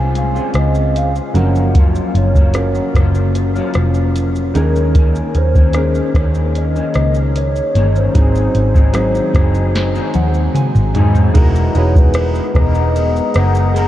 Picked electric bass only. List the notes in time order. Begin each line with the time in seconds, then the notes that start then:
Already playing: C2
0.54 C#2
1.34 F#1
2.15 F#1
2.95 F#1
3.75 F1
4.55 D#2
5.35 D#2
6.15 D#2
6.95 C#2
7.75 G1
8.15 G#1
8.55 G#1
9.34 F#1
10.15 D#2
10.55 muted picked electric bass stroke
10.76 G#1
10.95 G#2
11.35 E1
11.75 E1
12.55 E1
13.36 F#1